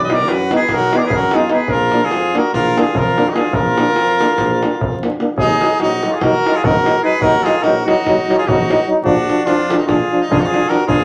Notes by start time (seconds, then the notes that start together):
Already playing: B1
0.03 B4 D#5
0.09 B3 D#4 D5, davul high
0.14 A#4
0.20 davul high
0.28 F#2 B4, davul high
0.32 F#4
0.39 davul high
0.51 B3 D#4 B4, davul high
0.56 G#4
0.61 davul high
0.69 B1 A#4, davul high, davul low
0.76 F#4
0.81 davul high
0.92 B3 D#4, davul high
0.96 G#4 A#4 D5
1.05 G#4 B4
1.10 F#2 A#4, davul low
1.17 F#4, davul high
1.31 B3 D#4 G#4, davul high
1.38 F4, davul high
1.49 D#4 G#4 B4, davul high
1.53 B3
1.58 davul high
1.68 A#1 A#4, davul low
1.73 F4
1.81 davul high
1.91 A#3 D4, davul high
2.02 F4 G#4, davul high
2.10 F2, davul high
2.23 davul high
2.34 A#3 D4 F#4, davul high
2.38 A#4
2.44 davul high
2.53 A#1 F4 A#4, davul high, davul low
2.65 davul high
2.77 A#3 D4 G#4, davul high
2.81 F4
2.94 F2 A#4, davul low
3.00 F4
3.08 davul high
3.17 A#3 D4, davul high
3.27 D#4 F#4, davul high
3.34 A#3 D4 G#4, davul high
3.38 F4
3.45 davul high
3.52 A#1 F4 A#4, davul low
3.66 davul high
3.77 A#3 D4, davul high
3.88 davul high
3.96 F2, davul high
4.08 davul high
4.20 A#3 D4, davul high
4.30 davul high
4.38 A#1, davul high, davul low
4.50 davul high
4.62 A#3 D4, davul high
4.73 davul high
4.80 F2, davul low
4.93 davul high
5.02 A#3 D4, davul high
5.12 davul high
5.20 A#3 D4, davul high
5.36 D#2 F#3 D#4 G#4, davul low
5.50 davul high
5.61 F#3 D#4, davul high
5.80 A#1 F#3 D#4 F#4, davul high
5.92 davul high
6.03 F#3 D#4, davul high
6.12 F4 G#4
6.20 D#2 D#4 F#4 A#4, davul high, davul low
6.24 F#3
6.34 davul high
6.46 F#3 D#4, davul high
6.53 F4 G#4
6.63 A#1 F#3 D#4 F#4 A#4, davul low
6.76 davul high
6.85 F#3 D#4, davul high
7.03 F#3 D#4 G#4 B4
7.13 davul high
7.20 D#2 F#3 D#4 F#4 A#4, davul low
7.34 davul high
7.44 F#3 D#4 F4 G#4, davul high
7.62 A#1 F#3 D#4 F#4 A#4, davul high
7.76 davul high
7.85 F#3 D#4 F#4, davul high
8.04 D#2 F#3 D#4, davul high, davul low
8.18 davul high
8.29 F#3 D#4, davul high
8.38 F4 G#4
8.46 A#1 F#3 D#4 F#4, davul low
8.60 davul high
8.68 F#3 D#4, davul high
8.86 F#3 D#4
8.97 davul high
9.02 A#1 F3 D4 F#4, davul low
9.07 D4
9.18 davul high
9.28 F3 D4, davul high
9.44 F2 F3 D4 F4, davul high
9.60 davul high
9.70 F3 D4, davul high
9.78 D#4 F#4
9.87 A#1 F3 D4 F4 G#4, davul high, davul low
10.01 davul high
10.11 F3 D4
10.19 D#4 F4 G#4
10.29 F2 F3 D4 F4 G#4, davul low
10.38 D#4 F#4
10.44 F4 G#4
10.52 F3 D4, davul high
10.68 F3 D4 F#4 A#4, davul high
10.81 davul high
10.86 A#1 F3 D4 F4 G#4, davul low
11.01 davul high